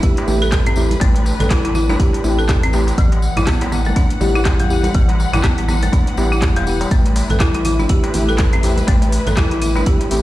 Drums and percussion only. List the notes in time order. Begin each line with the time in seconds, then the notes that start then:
0.02 kick, closed hi-hat, tambourine
0.17 closed hi-hat, darbuka tek
0.27 tambourine, low conga
0.41 tambourine, high conga
0.52 kick, cross-stick, clap, closed hi-hat, tambourine, darbuka tek
0.66 closed hi-hat, mid tom
0.76 tambourine, darbuka tek
0.91 closed hi-hat, tambourine, high conga
1.00 kick, closed hi-hat, tambourine, darbuka tek
1.14 closed hi-hat, darbuka ka
1.26 tambourine, darbuka ka
1.40 closed hi-hat, mid tom, tambourine, darbuka tek, high conga, low conga
1.50 kick, cross-stick, clap, closed hi-hat, tambourine
1.64 closed hi-hat, high conga, darbuka tek
1.75 tambourine, low conga
1.89 tambourine, high conga, darbuka tek
2.00 kick, closed hi-hat, tambourine
2.13 closed hi-hat, darbuka ka
2.24 tambourine, darbuka tek
2.39 tambourine
2.49 kick, cross-stick, clap, closed hi-hat, mid tom, tambourine, darbuka tek
2.63 closed hi-hat
2.73 tambourine, darbuka tek
2.87 closed hi-hat, tambourine, darbuka ka
2.98 kick, closed hi-hat, tambourine
3.12 closed hi-hat, darbuka ka, darbuka tek
3.22 tambourine
3.37 closed hi-hat, mid tom, tambourine, high conga, darbuka tek, low conga
3.47 kick, cross-stick, clap, closed hi-hat, tambourine
3.61 closed hi-hat, darbuka tek, high conga
3.72 tambourine, low conga
3.85 tambourine, high conga, low conga
3.96 kick, closed hi-hat, tambourine, darbuka tek
4.10 closed hi-hat
4.21 tambourine, darbuka tek, low conga
4.35 tambourine, high conga
4.45 kick, cross-stick, clap, closed hi-hat, tambourine, darbuka tek
4.60 closed hi-hat, mid tom
4.70 tambourine
4.84 closed hi-hat, tambourine, high conga, darbuka tek
4.94 kick, closed hi-hat, tambourine
5.09 closed hi-hat, darbuka ka, darbuka tek
5.20 tambourine, darbuka ka
5.33 closed hi-hat, mid tom, tambourine, darbuka tek, high conga, low conga
5.44 kick, cross-stick, clap, closed hi-hat, tambourine
5.58 closed hi-hat, high conga
5.68 tambourine, darbuka tek, high conga, low conga
5.82 closed hi-hat, tambourine, high conga, low conga
5.92 kick, closed hi-hat, tambourine, darbuka tek
6.07 closed hi-hat, darbuka ka
6.17 tambourine, darbuka tek
6.32 tambourine
6.42 kick, cross-stick, clap, closed hi-hat, mid tom, tambourine
6.56 closed hi-hat, darbuka tek
6.67 tambourine
6.81 closed hi-hat, tambourine, darbuka ka, darbuka tek
6.91 kick, closed hi-hat, tambourine
7.06 closed hi-hat, darbuka ka
7.16 open hi-hat, tambourine, darbuka tek
7.30 closed hi-hat, mid tom, tambourine, high conga, low conga
7.40 kick, cross-stick, clap, closed hi-hat, tambourine
7.54 closed hi-hat, high conga, darbuka tek
7.65 open hi-hat, tambourine, low conga
7.79 tambourine, high conga, darbuka tek, low conga
7.89 kick, closed hi-hat, tambourine
8.04 closed hi-hat, darbuka tek
8.14 open hi-hat, tambourine, low conga
8.29 tambourine, high conga
8.38 kick, cross-stick, clap, closed hi-hat, tambourine, darbuka tek
8.53 closed hi-hat, mid tom
8.63 open hi-hat, tambourine, darbuka tek
8.77 closed hi-hat, tambourine, high conga
8.87 kick, closed hi-hat, tambourine, darbuka tek
9.02 closed hi-hat, darbuka ka
9.12 open hi-hat, tambourine, darbuka ka
9.27 closed hi-hat, mid tom, tambourine, high conga, darbuka tek, low conga
9.37 kick, cross-stick, clap, closed hi-hat, tambourine
9.51 closed hi-hat, darbuka tek, high conga
9.62 open hi-hat, tambourine, low conga
9.76 tambourine, darbuka tek, high conga
9.86 kick, closed hi-hat, tambourine
10.01 closed hi-hat, darbuka ka
10.11 open hi-hat, tambourine, darbuka tek